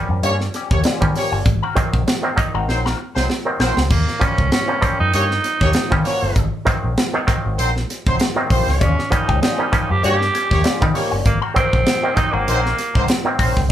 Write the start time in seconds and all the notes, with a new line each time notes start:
Already playing: F3 G3 A#3 C#4
0.09 F#2, muted clean electric guitar stroke
0.22 G2 G3 A#3 C#4 F4 G4 C#5, closed hi-hat
0.40 muted clean electric guitar stroke, snare
0.54 G3 C#4 G4, snare, closed hi-hat
0.71 D#2 A#3 C#4 G4 C#5, kick
0.84 G3 C#4 F4, snare, closed hi-hat
1.00 D#3 F3 G3 A#3 C#4, kick
1.15 A#3 C#4 G4 C#5, muted clean electric guitar stroke, snare, open hi-hat
1.32 G1 G3 C#4 F4
1.46 G#1, muted clean electric guitar stroke, kick, closed hi-hat
1.63 C4 F#4 A#4
1.75 D#3 F#3 A#3 C4, muted clean electric guitar stroke, kick, closed hi-hat
1.93 A#1, muted clean electric guitar stroke, kick
2.07 muted clean electric guitar stroke, snare, closed hi-hat
2.23 D#3 F#3 A#3 C4, muted clean electric guitar stroke
2.36 D#3 F#3 A#3 D#4, muted fingered electric bass stroke, kick, closed hi-hat
2.54 G#1 C4 F#4 A#4
2.68 A#1 F#3 C4 D#4 C5, muted clean electric guitar stroke, snare
2.85 C4 F#4 A#4, snare
2.98 muted clean electric guitar stroke
3.15 C2 F#3 C4 D#4 C5, muted clean electric guitar stroke, snare
3.30 snare
3.45 D#3 F#3 A#3 C4, muted clean electric guitar stroke
3.59 A#1 F#3 C4 D#4 F#4 A#4 C5, snare
3.77 C#2, muted clean electric guitar stroke, snare
3.90 D#2 A#3, kick, crash
4.08 snare
4.20 F3 G3 A#3 C#4, kick, closed hi-hat
4.38 C#2, kick
4.52 C#4, snare, closed hi-hat
4.68 F3 G3 A#3 C#4
4.81 F3 G3 A#3 C4, muted fingered electric bass stroke, kick, closed hi-hat
5.00 F#2 D#4
5.13 G2 A#3 C#4 D#4 G4 C#5, closed hi-hat
5.31 snare
5.44 snare, closed hi-hat
5.60 D#2 A#3 C#4 G4 C#5, kick, snare
5.73 snare, closed hi-hat
5.90 D#3 F3 G3 A#3 C#4, kick
6.05 A#3 C#4 F#4 C#5, snare, open hi-hat
6.22 G1
6.36 G#1, kick, closed hi-hat
6.65 D#3 F#3 A#3 C4, kick, closed hi-hat
6.84 A#1
6.98 snare, closed hi-hat
7.13 D#3 F#3 A#3 D#4
7.27 D#3 F#3 A#3 C4, muted fingered electric bass stroke, kick, closed hi-hat
7.46 G#1
7.59 A#1 F#3 C4 D#4 C5, closed hi-hat
7.76 snare
7.90 snare, closed hi-hat
8.06 C2 F#3 C4 D#4 C5, kick
8.20 snare, closed hi-hat
8.36 D#3 F#3 A#3 C4
8.50 A#1 G3 C4 F4 C5, kick, open hi-hat
8.68 C#2, snare
8.80 D#2 G3 C#4 F4, kick, closed hi-hat
8.98 muted clean electric guitar stroke, snare
9.11 F3 G3 A#3 C#4 D#4, muted clean electric guitar stroke, kick, closed hi-hat
9.28 C#2 G3 C#4 G4, kick
9.41 G3 C#4 D#4 F4, snare, closed hi-hat
9.58 F3 G3 A#3 C#4
9.72 F3 G3 A#3 C#4, muted clean electric guitar stroke, muted fingered electric bass stroke, kick, closed hi-hat
9.90 F#2 G4, muted clean electric guitar stroke
10.03 G2 G3 A#3 C#4 F4 G4 C#5, closed hi-hat
10.20 muted clean electric guitar stroke, snare
10.33 G3 C#4 G4, snare, closed hi-hat
10.51 D#2 A#3 C#4 G4 C#5, muted clean electric guitar stroke, kick, snare
10.64 G3 C#4 F4, snare, closed hi-hat
10.81 D#3 F3 G3 A#3 D#4, kick
10.94 A#3 C#4 G4 C#5, muted clean electric guitar stroke, snare, open hi-hat
11.11 G1 G3 C#4 F4
11.25 G#1 A#3, muted clean electric guitar stroke, kick, closed hi-hat
11.42 C4 F#4 A#4
11.54 D#3 F#3 A#3 C4, kick, closed hi-hat
11.73 A#1, muted clean electric guitar stroke, kick
11.86 muted clean electric guitar stroke, snare, closed hi-hat
12.02 D#3 F#3 A#3 C4, muted clean electric guitar stroke
12.15 D#3 F#3 A#3 C4 D#4, muted fingered electric bass stroke, kick, closed hi-hat
12.33 G#1 A#3 C4 F#4 A#4
12.47 A#1 F#3 C4 D#4 F#4 A#4 C5, closed hi-hat
12.66 snare
12.77 muted clean electric guitar stroke, snare, closed hi-hat
12.94 C2 F#3 C4 D#4 C5, muted clean electric guitar stroke, kick
13.08 snare, closed hi-hat
13.25 D#3 F#3 A#3 C4, muted clean electric guitar stroke
13.38 A#1 F#3 C4 D#4 F#4 A#4 C5, kick, open hi-hat
13.55 C#2, muted clean electric guitar stroke, kick, snare